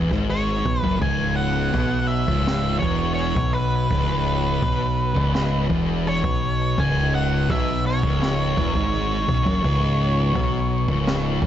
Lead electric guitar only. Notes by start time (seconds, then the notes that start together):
0.30 C#5
0.81 B4
1.02 G#5
1.36 F#5
2.07 E5
2.79 C#5
3.14 C#5
3.53 B4
6.08 C#5
6.80 G#5
7.15 F#5
7.50 E5
7.86 C#5